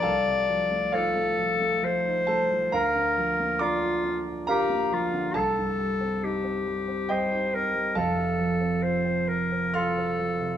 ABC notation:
X:1
M:3/4
L:1/16
Q:1/4=68
K:Fmix
V:1 name="Clarinet"
d4 A4 c4 | B4 F2 z2 G2 F2 | A4 G4 c2 B2 | A4 c2 B2 A4 |]
V:2 name="Grand piano"
[Afa]4 [Fcf]6 [Aa]2 | [Bfb]4 [dbd']4 [Bfb]4 | [Aa]8 [Geg]2 z2 | [Afa]8 [fc'f']4 |]
V:3 name="Grand piano"
C,, C, F, A, E A, F, A, F, E A, F, | D,, D, F, B, D F D F D B, F, D, | C,, G,, G, C E C G, C G, E C G, | [F,,,F,,] C, F, C F C2 C F C F, C, |]